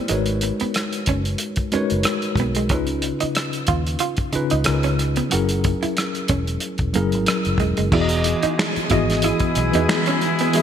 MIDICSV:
0, 0, Header, 1, 9, 480
1, 0, Start_track
1, 0, Tempo, 652174
1, 69, Time_signature, 4, 2, 24, 8
1, 7817, End_track
2, 0, Start_track
2, 0, Title_t, "String machine"
2, 0, Program_c, 0, 50
2, 5831, Note_on_c, 0, 80, 73
2, 5835, Note_on_c, 0, 87, 93
2, 5837, Note_on_c, 0, 64, 75
2, 5837, Note_on_c, 0, 68, 75
2, 7817, Note_off_c, 0, 64, 0
2, 7817, Note_off_c, 0, 68, 0
2, 7817, Note_off_c, 0, 80, 0
2, 7817, Note_off_c, 0, 87, 0
2, 7817, End_track
3, 0, Start_track
3, 0, Title_t, "Tine electric piano"
3, 0, Program_c, 1, 4
3, 0, Control_c, 1, 64, 127
3, 0, Note_on_c, 1, 57, 71
3, 0, Note_on_c, 1, 64, 70
3, 0, Note_on_c, 1, 67, 72
3, 0, Note_on_c, 1, 71, 70
3, 0, Note_on_c, 1, 72, 70
3, 0, Note_on_c, 1, 74, 85
3, 62, Note_on_c, 1, 56, 72
3, 67, Note_on_c, 1, 63, 72
3, 76, Note_on_c, 1, 66, 65
3, 79, Control_c, 1, 64, 0
3, 80, Note_off_c, 1, 67, 0
3, 80, Note_off_c, 1, 74, 0
3, 80, Note_on_c, 1, 70, 60
3, 82, Note_off_c, 1, 57, 0
3, 82, Note_off_c, 1, 71, 0
3, 83, Note_on_c, 1, 71, 65
3, 84, Note_off_c, 1, 64, 0
3, 84, Note_off_c, 1, 72, 0
3, 91, Note_on_c, 1, 73, 77
3, 185, Control_c, 1, 64, 127
3, 954, Note_off_c, 1, 56, 0
3, 957, Note_off_c, 1, 63, 0
3, 961, Note_off_c, 1, 66, 0
3, 963, Note_off_c, 1, 70, 0
3, 965, Note_off_c, 1, 71, 0
3, 969, Note_off_c, 1, 73, 0
3, 1264, Note_on_c, 1, 56, 77
3, 1269, Note_on_c, 1, 63, 73
3, 1271, Note_on_c, 1, 66, 72
3, 1276, Note_on_c, 1, 70, 69
3, 1285, Note_on_c, 1, 71, 75
3, 1289, Note_on_c, 1, 73, 97
3, 1933, Note_off_c, 1, 56, 0
3, 1936, Note_off_c, 1, 63, 0
3, 1937, Note_off_c, 1, 66, 0
3, 1939, Note_off_c, 1, 70, 0
3, 1944, Note_off_c, 1, 71, 0
3, 1946, Note_off_c, 1, 73, 0
3, 1987, Note_on_c, 1, 49, 77
3, 1993, Note_on_c, 1, 61, 69
3, 1998, Note_on_c, 1, 63, 73
3, 2000, Control_c, 1, 64, 0
3, 2006, Note_on_c, 1, 65, 71
3, 2013, Note_on_c, 1, 71, 78
3, 2127, Control_c, 1, 64, 127
3, 2877, Note_off_c, 1, 49, 0
3, 2880, Note_off_c, 1, 61, 0
3, 2882, Note_off_c, 1, 63, 0
3, 2886, Note_off_c, 1, 65, 0
3, 2890, Note_off_c, 1, 71, 0
3, 3183, Note_on_c, 1, 49, 78
3, 3184, Note_on_c, 1, 61, 74
3, 3192, Note_on_c, 1, 63, 79
3, 3200, Note_on_c, 1, 65, 69
3, 3205, Note_on_c, 1, 71, 96
3, 3407, Note_off_c, 1, 49, 0
3, 3414, Note_off_c, 1, 61, 0
3, 3415, Note_on_c, 1, 49, 78
3, 3422, Note_off_c, 1, 63, 0
3, 3423, Note_on_c, 1, 61, 74
3, 3429, Note_off_c, 1, 65, 0
3, 3431, Note_on_c, 1, 63, 71
3, 3437, Note_off_c, 1, 71, 0
3, 3438, Note_on_c, 1, 65, 69
3, 3440, Control_c, 1, 64, 0
3, 3442, Note_on_c, 1, 70, 73
3, 3488, Note_off_c, 1, 70, 0
3, 3489, Note_on_c, 1, 71, 80
3, 3575, Control_c, 1, 64, 127
3, 3867, Note_off_c, 1, 49, 0
3, 3870, Note_off_c, 1, 61, 0
3, 3875, Note_off_c, 1, 63, 0
3, 3878, Note_off_c, 1, 65, 0
3, 3897, Note_on_c, 1, 54, 65
3, 3903, Note_off_c, 1, 71, 0
3, 3904, Note_on_c, 1, 61, 66
3, 3913, Note_on_c, 1, 64, 65
3, 3918, Note_on_c, 1, 68, 66
3, 3920, Control_c, 1, 64, 0
3, 3925, Note_on_c, 1, 70, 81
3, 4037, Control_c, 1, 64, 127
3, 4792, Note_off_c, 1, 54, 0
3, 4795, Note_off_c, 1, 61, 0
3, 4800, Note_off_c, 1, 64, 0
3, 4802, Note_off_c, 1, 68, 0
3, 4806, Note_off_c, 1, 70, 0
3, 5104, Note_on_c, 1, 54, 79
3, 5111, Note_on_c, 1, 61, 65
3, 5118, Note_on_c, 1, 64, 65
3, 5123, Note_on_c, 1, 68, 72
3, 5131, Note_on_c, 1, 70, 87
3, 5773, Note_off_c, 1, 54, 0
3, 5777, Note_off_c, 1, 61, 0
3, 5780, Note_off_c, 1, 64, 0
3, 5783, Note_off_c, 1, 68, 0
3, 5787, Note_off_c, 1, 70, 0
3, 5829, Note_on_c, 1, 52, 80
3, 5831, Note_on_c, 1, 59, 74
3, 5838, Note_on_c, 1, 66, 72
3, 5839, Control_c, 1, 64, 0
3, 5844, Note_on_c, 1, 68, 74
3, 5850, Note_on_c, 1, 74, 74
3, 5892, Note_off_c, 1, 74, 0
3, 5898, Note_on_c, 1, 75, 94
3, 5978, Control_c, 1, 64, 127
3, 6495, Note_off_c, 1, 52, 0
3, 6496, Note_off_c, 1, 59, 0
3, 6500, Note_off_c, 1, 66, 0
3, 6503, Note_off_c, 1, 68, 0
3, 6530, Note_off_c, 1, 75, 0
3, 6541, Note_on_c, 1, 52, 74
3, 6547, Note_on_c, 1, 59, 68
3, 6556, Note_on_c, 1, 66, 73
3, 6560, Note_on_c, 1, 68, 78
3, 6566, Note_on_c, 1, 75, 85
3, 7103, Note_off_c, 1, 52, 0
3, 7106, Note_off_c, 1, 59, 0
3, 7110, Note_off_c, 1, 66, 0
3, 7112, Note_off_c, 1, 68, 0
3, 7115, Note_off_c, 1, 75, 0
3, 7154, Note_on_c, 1, 52, 78
3, 7163, Note_on_c, 1, 59, 69
3, 7169, Note_on_c, 1, 66, 63
3, 7177, Note_on_c, 1, 68, 71
3, 7180, Note_on_c, 1, 71, 86
3, 7702, Note_off_c, 1, 52, 0
3, 7707, Note_off_c, 1, 59, 0
3, 7709, Note_off_c, 1, 66, 0
3, 7713, Note_off_c, 1, 68, 0
3, 7715, Note_off_c, 1, 71, 0
3, 7747, Note_on_c, 1, 52, 81
3, 7751, Note_on_c, 1, 59, 75
3, 7759, Note_on_c, 1, 66, 75
3, 7762, Note_on_c, 1, 68, 76
3, 7769, Note_on_c, 1, 76, 95
3, 7817, Note_off_c, 1, 52, 0
3, 7817, Note_off_c, 1, 59, 0
3, 7817, Note_off_c, 1, 66, 0
3, 7817, Note_off_c, 1, 68, 0
3, 7817, Note_off_c, 1, 76, 0
3, 7817, End_track
4, 0, Start_track
4, 0, Title_t, "Hollow-body jazz guitar"
4, 0, Program_c, 2, 26
4, 69, Note_on_c, 2, 56, 69
4, 167, Note_off_c, 2, 56, 0
4, 449, Note_on_c, 2, 59, 53
4, 528, Note_off_c, 2, 59, 0
4, 801, Note_on_c, 2, 61, 64
4, 895, Note_off_c, 2, 61, 0
4, 1277, Note_on_c, 2, 61, 62
4, 1372, Note_off_c, 2, 61, 0
4, 1765, Note_on_c, 2, 59, 64
4, 1857, Note_off_c, 2, 59, 0
4, 1888, Note_on_c, 2, 56, 68
4, 1967, Note_off_c, 2, 56, 0
4, 1996, Note_on_c, 2, 61, 70
4, 2091, Note_off_c, 2, 61, 0
4, 2359, Note_on_c, 2, 63, 61
4, 2442, Note_off_c, 2, 63, 0
4, 2709, Note_on_c, 2, 65, 66
4, 2807, Note_off_c, 2, 65, 0
4, 2947, Note_on_c, 2, 65, 69
4, 3046, Note_off_c, 2, 65, 0
4, 3322, Note_on_c, 2, 63, 66
4, 3403, Note_off_c, 2, 63, 0
4, 3563, Note_on_c, 2, 61, 72
4, 3644, Note_off_c, 2, 61, 0
4, 3806, Note_on_c, 2, 59, 69
4, 3886, Note_off_c, 2, 59, 0
4, 3915, Note_on_c, 2, 66, 67
4, 4011, Note_off_c, 2, 66, 0
4, 4289, Note_on_c, 2, 64, 50
4, 4368, Note_off_c, 2, 64, 0
4, 4633, Note_on_c, 2, 61, 67
4, 4730, Note_off_c, 2, 61, 0
4, 5119, Note_on_c, 2, 58, 63
4, 5214, Note_off_c, 2, 58, 0
4, 5593, Note_on_c, 2, 56, 62
4, 5690, Note_off_c, 2, 56, 0
4, 5723, Note_on_c, 2, 56, 60
4, 5804, Note_off_c, 2, 56, 0
4, 5840, Note_on_c, 2, 64, 70
4, 5934, Note_off_c, 2, 64, 0
4, 6206, Note_on_c, 2, 63, 62
4, 6286, Note_off_c, 2, 63, 0
4, 6560, Note_on_c, 2, 64, 81
4, 6654, Note_off_c, 2, 64, 0
4, 6803, Note_on_c, 2, 64, 73
4, 6896, Note_off_c, 2, 64, 0
4, 7177, Note_on_c, 2, 63, 75
4, 7253, Note_off_c, 2, 63, 0
4, 7416, Note_on_c, 2, 61, 82
4, 7492, Note_off_c, 2, 61, 0
4, 7661, Note_on_c, 2, 59, 68
4, 7735, Note_off_c, 2, 59, 0
4, 7771, Note_on_c, 2, 56, 77
4, 7817, Note_off_c, 2, 56, 0
4, 7817, End_track
5, 0, Start_track
5, 0, Title_t, "Horn section"
5, 0, Program_c, 3, 61
5, 6792, Note_on_c, 3, 56, 71
5, 6793, Note_on_c, 3, 59, 69
5, 6795, Note_on_c, 3, 64, 71
5, 7817, Note_off_c, 3, 56, 0
5, 7817, Note_off_c, 3, 59, 0
5, 7817, Note_off_c, 3, 64, 0
5, 7817, End_track
6, 0, Start_track
6, 0, Title_t, "Fingered electric bass"
6, 0, Program_c, 4, 33
6, 77, Note_on_c, 4, 32, 99
6, 371, Note_off_c, 4, 32, 0
6, 800, Note_on_c, 4, 30, 76
6, 989, Note_off_c, 4, 30, 0
6, 1412, Note_on_c, 4, 30, 74
6, 1495, Note_off_c, 4, 30, 0
6, 1740, Note_on_c, 4, 35, 68
6, 1993, Note_off_c, 4, 35, 0
6, 1993, Note_on_c, 4, 37, 85
6, 2289, Note_off_c, 4, 37, 0
6, 2719, Note_on_c, 4, 39, 88
6, 2908, Note_off_c, 4, 39, 0
6, 3331, Note_on_c, 4, 37, 75
6, 3414, Note_off_c, 4, 37, 0
6, 3443, Note_on_c, 4, 37, 93
6, 3823, Note_off_c, 4, 37, 0
6, 3925, Note_on_c, 4, 30, 87
6, 4216, Note_off_c, 4, 30, 0
6, 4641, Note_on_c, 4, 28, 79
6, 4829, Note_off_c, 4, 28, 0
6, 5006, Note_on_c, 4, 28, 72
6, 5092, Note_off_c, 4, 28, 0
6, 5123, Note_on_c, 4, 30, 79
6, 5257, Note_off_c, 4, 30, 0
6, 5257, Note_on_c, 4, 32, 70
6, 5338, Note_off_c, 4, 32, 0
6, 5494, Note_on_c, 4, 30, 77
6, 5576, Note_off_c, 4, 30, 0
6, 5586, Note_on_c, 4, 28, 70
6, 5692, Note_off_c, 4, 28, 0
6, 5730, Note_on_c, 4, 30, 75
6, 5814, Note_off_c, 4, 30, 0
6, 5837, Note_on_c, 4, 28, 101
6, 6131, Note_off_c, 4, 28, 0
6, 6564, Note_on_c, 4, 32, 92
6, 6855, Note_off_c, 4, 32, 0
6, 7039, Note_on_c, 4, 35, 83
6, 7140, Note_off_c, 4, 35, 0
6, 7174, Note_on_c, 4, 40, 99
6, 7256, Note_off_c, 4, 40, 0
6, 7817, End_track
7, 0, Start_track
7, 0, Title_t, "Muted fingered electric bass strokes"
7, 456, Note_on_c, 9, 29, 40
7, 529, Note_off_c, 9, 29, 0
7, 1285, Note_on_c, 9, 29, 44
7, 1358, Note_off_c, 9, 29, 0
7, 2378, Note_on_c, 9, 29, 43
7, 2452, Note_off_c, 9, 29, 0
7, 3206, Note_on_c, 9, 29, 40
7, 3280, Note_off_c, 9, 29, 0
7, 4300, Note_on_c, 9, 29, 39
7, 4373, Note_off_c, 9, 29, 0
7, 6210, Note_on_c, 9, 29, 48
7, 6284, Note_off_c, 9, 29, 0
7, 6454, Note_on_c, 9, 29, 41
7, 6527, Note_off_c, 9, 29, 0
7, 7817, End_track
8, 0, Start_track
8, 0, Title_t, "Muted hollow-body jazz guitar strokes"
8, 319, Note_on_c, 9, 29, 32
8, 393, Note_off_c, 9, 29, 0
8, 1524, Note_on_c, 9, 29, 37
8, 1598, Note_off_c, 9, 29, 0
8, 2237, Note_on_c, 9, 29, 31
8, 2311, Note_off_c, 9, 29, 0
8, 3185, Note_on_c, 9, 29, 38
8, 3258, Note_off_c, 9, 29, 0
8, 3674, Note_on_c, 9, 29, 36
8, 3748, Note_off_c, 9, 29, 0
8, 4160, Note_on_c, 9, 29, 32
8, 4233, Note_off_c, 9, 29, 0
8, 5358, Note_on_c, 9, 29, 36
8, 5432, Note_off_c, 9, 29, 0
8, 6078, Note_on_c, 9, 29, 37
8, 6151, Note_off_c, 9, 29, 0
8, 7049, Note_on_c, 9, 29, 40
8, 7123, Note_off_c, 9, 29, 0
8, 7526, Note_on_c, 9, 29, 40
8, 7599, Note_off_c, 9, 29, 0
8, 7817, End_track
9, 0, Start_track
9, 0, Title_t, "Drums"
9, 61, Note_on_c, 9, 42, 68
9, 135, Note_off_c, 9, 42, 0
9, 189, Note_on_c, 9, 42, 47
9, 262, Note_off_c, 9, 42, 0
9, 303, Note_on_c, 9, 42, 63
9, 376, Note_off_c, 9, 42, 0
9, 440, Note_on_c, 9, 42, 44
9, 514, Note_off_c, 9, 42, 0
9, 547, Note_on_c, 9, 42, 72
9, 558, Note_on_c, 9, 37, 89
9, 621, Note_off_c, 9, 42, 0
9, 632, Note_off_c, 9, 37, 0
9, 681, Note_on_c, 9, 42, 38
9, 754, Note_off_c, 9, 42, 0
9, 781, Note_on_c, 9, 42, 70
9, 791, Note_on_c, 9, 36, 77
9, 855, Note_off_c, 9, 42, 0
9, 865, Note_off_c, 9, 36, 0
9, 921, Note_on_c, 9, 42, 42
9, 995, Note_off_c, 9, 42, 0
9, 1018, Note_on_c, 9, 42, 70
9, 1091, Note_off_c, 9, 42, 0
9, 1147, Note_on_c, 9, 42, 40
9, 1157, Note_on_c, 9, 36, 77
9, 1221, Note_off_c, 9, 42, 0
9, 1231, Note_off_c, 9, 36, 0
9, 1264, Note_on_c, 9, 42, 56
9, 1338, Note_off_c, 9, 42, 0
9, 1398, Note_on_c, 9, 42, 42
9, 1471, Note_off_c, 9, 42, 0
9, 1497, Note_on_c, 9, 42, 87
9, 1511, Note_on_c, 9, 37, 92
9, 1571, Note_off_c, 9, 42, 0
9, 1585, Note_off_c, 9, 37, 0
9, 1635, Note_on_c, 9, 42, 39
9, 1708, Note_off_c, 9, 42, 0
9, 1734, Note_on_c, 9, 36, 76
9, 1745, Note_on_c, 9, 42, 51
9, 1807, Note_off_c, 9, 36, 0
9, 1819, Note_off_c, 9, 42, 0
9, 1875, Note_on_c, 9, 42, 49
9, 1948, Note_off_c, 9, 42, 0
9, 1982, Note_on_c, 9, 42, 70
9, 1987, Note_on_c, 9, 36, 93
9, 2056, Note_off_c, 9, 42, 0
9, 2061, Note_off_c, 9, 36, 0
9, 2110, Note_on_c, 9, 42, 46
9, 2183, Note_off_c, 9, 42, 0
9, 2223, Note_on_c, 9, 42, 70
9, 2297, Note_off_c, 9, 42, 0
9, 2358, Note_on_c, 9, 42, 47
9, 2431, Note_off_c, 9, 42, 0
9, 2466, Note_on_c, 9, 42, 75
9, 2477, Note_on_c, 9, 37, 90
9, 2539, Note_off_c, 9, 42, 0
9, 2551, Note_off_c, 9, 37, 0
9, 2598, Note_on_c, 9, 42, 39
9, 2672, Note_off_c, 9, 42, 0
9, 2698, Note_on_c, 9, 42, 62
9, 2711, Note_on_c, 9, 36, 89
9, 2772, Note_off_c, 9, 42, 0
9, 2784, Note_off_c, 9, 36, 0
9, 2845, Note_on_c, 9, 42, 46
9, 2918, Note_off_c, 9, 42, 0
9, 2935, Note_on_c, 9, 42, 69
9, 3009, Note_off_c, 9, 42, 0
9, 3066, Note_on_c, 9, 42, 38
9, 3076, Note_on_c, 9, 36, 74
9, 3140, Note_off_c, 9, 42, 0
9, 3150, Note_off_c, 9, 36, 0
9, 3184, Note_on_c, 9, 42, 56
9, 3257, Note_off_c, 9, 42, 0
9, 3313, Note_on_c, 9, 42, 46
9, 3387, Note_off_c, 9, 42, 0
9, 3417, Note_on_c, 9, 42, 85
9, 3431, Note_on_c, 9, 37, 105
9, 3491, Note_off_c, 9, 42, 0
9, 3505, Note_off_c, 9, 37, 0
9, 3556, Note_on_c, 9, 42, 42
9, 3630, Note_off_c, 9, 42, 0
9, 3674, Note_on_c, 9, 42, 52
9, 3679, Note_on_c, 9, 37, 29
9, 3748, Note_off_c, 9, 42, 0
9, 3753, Note_off_c, 9, 37, 0
9, 3797, Note_on_c, 9, 42, 47
9, 3871, Note_off_c, 9, 42, 0
9, 3908, Note_on_c, 9, 42, 73
9, 3982, Note_off_c, 9, 42, 0
9, 4038, Note_on_c, 9, 42, 45
9, 4112, Note_off_c, 9, 42, 0
9, 4151, Note_on_c, 9, 42, 60
9, 4157, Note_on_c, 9, 36, 84
9, 4224, Note_off_c, 9, 42, 0
9, 4230, Note_off_c, 9, 36, 0
9, 4288, Note_on_c, 9, 42, 45
9, 4361, Note_off_c, 9, 42, 0
9, 4392, Note_on_c, 9, 42, 68
9, 4403, Note_on_c, 9, 37, 83
9, 4465, Note_off_c, 9, 42, 0
9, 4477, Note_off_c, 9, 37, 0
9, 4525, Note_on_c, 9, 42, 38
9, 4599, Note_off_c, 9, 42, 0
9, 4624, Note_on_c, 9, 42, 67
9, 4633, Note_on_c, 9, 36, 87
9, 4698, Note_off_c, 9, 42, 0
9, 4707, Note_off_c, 9, 36, 0
9, 4765, Note_on_c, 9, 42, 44
9, 4839, Note_off_c, 9, 42, 0
9, 4861, Note_on_c, 9, 42, 67
9, 4934, Note_off_c, 9, 42, 0
9, 4989, Note_on_c, 9, 42, 39
9, 4998, Note_on_c, 9, 36, 72
9, 5063, Note_off_c, 9, 42, 0
9, 5072, Note_off_c, 9, 36, 0
9, 5107, Note_on_c, 9, 42, 58
9, 5180, Note_off_c, 9, 42, 0
9, 5241, Note_on_c, 9, 42, 45
9, 5315, Note_off_c, 9, 42, 0
9, 5347, Note_on_c, 9, 42, 88
9, 5361, Note_on_c, 9, 37, 104
9, 5420, Note_off_c, 9, 42, 0
9, 5434, Note_off_c, 9, 37, 0
9, 5482, Note_on_c, 9, 42, 39
9, 5555, Note_off_c, 9, 42, 0
9, 5577, Note_on_c, 9, 36, 83
9, 5591, Note_on_c, 9, 42, 48
9, 5651, Note_off_c, 9, 36, 0
9, 5665, Note_off_c, 9, 42, 0
9, 5718, Note_on_c, 9, 42, 48
9, 5792, Note_off_c, 9, 42, 0
9, 5828, Note_on_c, 9, 49, 93
9, 5829, Note_on_c, 9, 36, 104
9, 5902, Note_off_c, 9, 36, 0
9, 5902, Note_off_c, 9, 49, 0
9, 5954, Note_on_c, 9, 42, 55
9, 6028, Note_off_c, 9, 42, 0
9, 6066, Note_on_c, 9, 42, 75
9, 6140, Note_off_c, 9, 42, 0
9, 6201, Note_on_c, 9, 42, 48
9, 6275, Note_off_c, 9, 42, 0
9, 6323, Note_on_c, 9, 38, 99
9, 6325, Note_on_c, 9, 26, 80
9, 6396, Note_off_c, 9, 38, 0
9, 6399, Note_off_c, 9, 26, 0
9, 6450, Note_on_c, 9, 42, 41
9, 6523, Note_off_c, 9, 42, 0
9, 6547, Note_on_c, 9, 42, 71
9, 6556, Note_on_c, 9, 36, 86
9, 6621, Note_off_c, 9, 42, 0
9, 6630, Note_off_c, 9, 36, 0
9, 6695, Note_on_c, 9, 42, 48
9, 6700, Note_on_c, 9, 38, 31
9, 6769, Note_off_c, 9, 42, 0
9, 6774, Note_off_c, 9, 38, 0
9, 6786, Note_on_c, 9, 42, 76
9, 6860, Note_off_c, 9, 42, 0
9, 6915, Note_on_c, 9, 42, 45
9, 6921, Note_on_c, 9, 36, 82
9, 6989, Note_off_c, 9, 42, 0
9, 6995, Note_off_c, 9, 36, 0
9, 7031, Note_on_c, 9, 42, 67
9, 7105, Note_off_c, 9, 42, 0
9, 7165, Note_on_c, 9, 42, 48
9, 7238, Note_off_c, 9, 42, 0
9, 7279, Note_on_c, 9, 38, 116
9, 7282, Note_on_c, 9, 26, 87
9, 7353, Note_off_c, 9, 38, 0
9, 7355, Note_off_c, 9, 26, 0
9, 7404, Note_on_c, 9, 42, 49
9, 7478, Note_off_c, 9, 42, 0
9, 7518, Note_on_c, 9, 42, 59
9, 7591, Note_off_c, 9, 42, 0
9, 7645, Note_on_c, 9, 42, 54
9, 7719, Note_off_c, 9, 42, 0
9, 7753, Note_on_c, 9, 42, 76
9, 7817, Note_off_c, 9, 42, 0
9, 7817, End_track
0, 0, End_of_file